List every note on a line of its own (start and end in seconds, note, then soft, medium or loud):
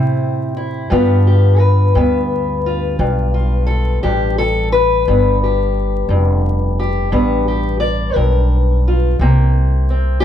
0.00 0.88 A2 medium
0.00 0.87 C3 medium
0.00 0.88 C4 soft
0.00 0.55 E4 soft
0.57 0.91 E4 soft
0.90 1.95 G2 medium
0.90 1.92 G2 medium
0.90 9.19 D3 medium
0.90 1.96 B3 medium
0.90 2.66 F4 medium
0.90 1.27 G4 soft
1.27 1.59 G4 soft
1.59 3.66 B4 medium
1.95 2.96 D2 medium
1.95 2.99 G2 medium
1.95 5.03 B3 soft
2.66 3.33 F4 soft
2.99 4.00 B1 medium
2.99 4.02 G2 medium
3.34 5.02 F4 soft
3.67 4.02 A4 medium
4.03 5.04 A1 medium
4.03 5.03 G2 medium
4.03 4.37 G4 medium
4.38 4.72 A4 medium
4.72 5.41 B4 medium
5.08 6.07 G1 medium
5.08 6.09 G2 medium
5.08 7.11 B3 medium
5.43 6.79 G4 soft
6.09 7.09 F1 medium
6.09 7.11 G2 medium
6.79 7.48 G4 soft
7.12 8.13 A1 medium
7.12 8.15 G2 medium
7.12 9.15 B3 soft
7.48 7.80 G4 soft
7.80 8.14 D5 medium
8.14 9.16 B1 medium
8.14 9.15 G2 medium
8.14 10.20 A#4 medium
8.88 9.16 F4 soft
9.19 10.19 C2 medium
9.19 10.22 C3 medium
9.19 10.25 A#3 soft
9.90 10.25 C4 soft
10.20 10.25 G4 medium